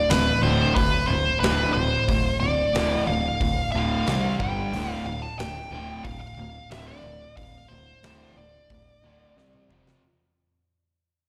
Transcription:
Already playing: D5
0.10 D1 D2 B4, snare, open hi-hat
0.14 A2
0.42 D1 D2 A2 C5
0.47 A2 D3
0.75 D1 D2 A2 B4, kick, open hi-hat
1.07 D1 D2 A2 C5
1.40 D1 D2 A2 B4, open hi-hat
1.44 D3, snare
1.73 D1 C5
1.78 D2 A2
2.08 D1 D2 A2, kick, open hi-hat
2.40 D1 D2 D5
2.44 A2
2.74 D1 D2 A2 D3, snare, open hi-hat
3.07 D1 D2 A2 F5
3.41 D1 D2 A2, kick, open hi-hat
3.72 D1 D2 D3 F5
3.76 A2
4.07 C2 C3 G3, snare, open hi-hat
4.11 C4
4.40 G1 G2 D3 G3 G5, kick
4.73 D1 D2 A2 D3, open hi-hat
4.91 F5
5.05 D1 D2 A2 F5
5.22 A5
5.39 D1 D2 A2 G5, snare, open hi-hat
5.71 D1 D2 A2 D3 G5
6.04 D1 D2 A2 F5, kick, open hi-hat
6.21 F5
6.37 D1 D2 A2
6.71 D1 D2 A2 D3 E5, snare, open hi-hat
6.87 D5
7.04 D1 D2 A2
7.37 D1 D2 A2 F5, kick, open hi-hat
7.68 D1 D2 C5
7.72 A2
8.03 D1 D2 A2 D3, snare, open hi-hat
8.36 D1 D2 A2 D5
8.70 D1 D2 A2, kick, open hi-hat
9.03 D1 D2 A2 D3
9.36 C2 C3 G3 C4, snare
9.53 mid tom
9.69 F1 F2 C3 F3, mid tom
9.87 snare

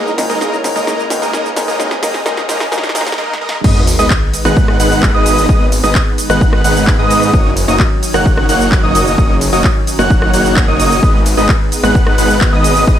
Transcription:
Already playing: A#2 E3 G#3 A#3 C#4 D#4 A#4 D#5, riser
0.07 cabasa
0.17 G#2 D#3 G#3 A#3 D#4, snare, open hi-hat, cabasa
0.30 G#3 A#3 D#4 A#4 D#5, cabasa
0.41 G#3 A#3 D#4 A#4 D#5, snare, cabasa
0.53 cabasa
0.64 G#2 D#3 G#3 A#3 D#4, snare, open hi-hat, cabasa
0.76 G#3 A#3 D#4 A#4 D#5, cabasa
0.87 G#3 A#3 D#4 A#4 D#5, snare, cabasa
1.00 cabasa
1.10 G#2 D#3 G#3 A#3 D#4, snare, open hi-hat, cabasa
1.22 G#3 A#3 D#4 A#4 D#5, cabasa
1.33 G#3 A#3 D#4 A#4 D#5, snare, cabasa
1.46 cabasa
1.56 G#2 D#3 G#3 A#3 D#4, snare, open hi-hat, cabasa
1.68 G#3 A#3 D#4 A#4 D#5, cabasa
1.79 G#2 D#3 G#3 A#3 D#4 G#4 A#4 D#5, snare, cabasa
1.91 snare, cabasa
2.02 G#2 D#3 G#3 A#3 D#4 A#4 D#5, snare, open hi-hat, cabasa
2.14 snare, cabasa
2.25 G#2 D#3 G#3 A#3 D#4 A#4 D#5, snare, cabasa
2.37 snare, cabasa
2.48 G#2 D#3 G#3 A#3 D#4 A#4 D#5, snare, open hi-hat, cabasa
2.60 snare, cabasa
2.71 G#2 D#3 G#3 A#3 D#4 A#4 D#5, snare, cabasa
2.78 snare
2.83 snare, cabasa
2.89 snare
2.94 G#2 D#3 G#3 A#3 D#4 A#4 D#5, snare, open hi-hat, cabasa
3.01 snare
3.07 snare, cabasa
3.12 snare
3.18 G#3 A#3 D#4 A#4 D#5, snare
3.33 snare
3.41 G#3 A#3 D#4 A#4 D#5
3.49 snare
3.64 G#1 D#3 G#3 B3 D#4 B4 D#5 D#6, kick, crash, ride, sub drop, cabasa
3.87 open hi-hat, ride, cabasa
3.99 G#1 G#3 B3 D#4 B4 D#5 D#6, cabasa
4.10 kick, clap, ride, cabasa
4.34 open hi-hat, ride, cabasa
4.45 G#1 G#3 B3 D#4 B4 F#5 F#6, cross-stick, cabasa
4.57 kick, ride, cabasa
4.68 cross-stick
4.80 G#1 G#3 B3 D#4 B4 F#5 F#6, open hi-hat, ride, cabasa
4.92 cabasa
5.03 kick, clap, ride, cabasa
5.14 G#1 G#3 B3 D#4 B4 D#5 D#6
5.26 open hi-hat, ride, cabasa
5.38 cabasa
5.49 G#1 G#3 B3 D#4 B4 D#5 D#6, kick, ride, cabasa
5.72 open hi-hat, ride, cabasa
5.84 G#1 G#3 B3 D#4 B4 D#5 D#6, cabasa
5.95 kick, clap, ride, cabasa
6.18 open hi-hat, ride, cabasa
6.30 G#1 G#3 B3 D#4 B4 F#5 F#6, cross-stick, cabasa
6.41 kick, ride, cabasa
6.53 cross-stick
6.64 G#1 G#3 B3 D#4 B4 F#5 F#6, open hi-hat, ride, cabasa
6.77 cabasa
6.87 kick, clap, ride, cabasa
6.99 G#2 G#3 B3 D#4 B4 D#5 D#6
7.11 open hi-hat, ride, cabasa
7.23 cabasa
7.33 F#1 F#3 A#3 C#4 D#4 F#4 C#5 D#6, kick, ride, cabasa
7.57 open hi-hat, ride, cabasa
7.68 F#1 A#3 D#4 F#4 C#5 D#5 D#6, cabasa
7.80 kick, clap, ride, cabasa
8.03 open hi-hat, ride, cabasa
8.14 F#1 A#3 D#4 F#4 C#5 F#5 F#6, cross-stick, cabasa
8.26 kick, ride, cabasa
8.37 cross-stick
8.49 F#1 A#3 D#4 F#4 C#5 F#5 F#6, open hi-hat, ride, cabasa
8.61 cabasa
8.72 kick, clap, ride, cabasa
8.83 F#1 A#3 D#4 F#4 C#5 D#5 D#6
8.95 open hi-hat, ride, cabasa
9.07 cabasa
9.18 F#1 A#3 D#4 F#4 C#5 D#5 D#6, kick, ride, cabasa
9.41 open hi-hat, ride, cabasa
9.53 F#1 A#3 D#4 F#4 C#5 D#5 D#6, cabasa
9.64 kick, clap, ride, cabasa
9.87 open hi-hat, ride, cabasa
9.99 F#1 A#3 D#4 F#4 C#5 F#5 F#6, cross-stick, cabasa
10.10 kick, ride, cabasa
10.22 cross-stick
10.33 F#1 A#3 D#4 F#4 C#5 F#5 F#6, open hi-hat, ride, cabasa
10.46 cabasa
10.57 kick, clap, ride, cabasa
10.68 F#1 A#3 D#4 F#4 C#5 D#5 D#6
10.80 open hi-hat, ride, cabasa
10.92 cabasa
11.03 G#1 G#3 B3 D#4 B4 D#5 D#6, kick, ride, cabasa
11.26 open hi-hat, ride, cabasa
11.37 G#1 G#3 B3 D#4 B4 D#5 D#6, cabasa
11.49 kick, clap, ride, cabasa
11.72 open hi-hat, ride, cabasa
11.83 G#1 G#3 B3 D#4 B4 F#5 F#6, cross-stick, cabasa
11.95 kick, ride, cabasa
12.07 cross-stick
12.18 G#1 G#3 B3 D#4 B4 F#5 F#6, open hi-hat, ride, cabasa
12.30 cabasa
12.41 kick, clap, ride, cabasa
12.53 G#1 G#3 B3 D#4 B4 D#5 D#6
12.64 open hi-hat, ride, cabasa
12.77 cabasa
12.87 G#1 F#3 G#3 B3 D#4 B4 D#5 D#6, kick, ride, cabasa

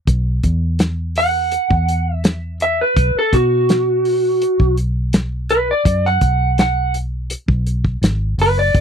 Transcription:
0.07 B1, kick, closed hi-hat
0.43 E2, kick, closed hi-hat
0.79 snare, closed hi-hat
1.16 F#5, open hi-hat
1.52 closed hi-hat
1.70 E2, kick
1.89 closed hi-hat
2.14 E5
2.24 snare, closed hi-hat
2.60 E5, closed hi-hat
2.81 B4
2.96 B1, kick, closed hi-hat
3.19 A4
3.33 B2 F#4, kick, closed hi-hat
3.69 snare, closed hi-hat
4.05 open hi-hat
4.42 closed hi-hat
4.60 B1, kick
4.77 closed hi-hat
5.13 snare, closed hi-hat
5.49 B4, closed hi-hat
5.71 D5
5.85 F#2, kick, closed hi-hat
6.05 F#5, snare
6.21 B1, kick, closed hi-hat
6.58 F#5, snare, closed hi-hat
6.94 closed hi-hat
7.30 closed hi-hat
7.48 B1, kick
7.67 closed hi-hat
7.85 kick
8.02 G#1, snare, closed hi-hat
8.38 F#1 B4, open hi-hat
8.59 D5
8.75 F#1, kick, closed hi-hat

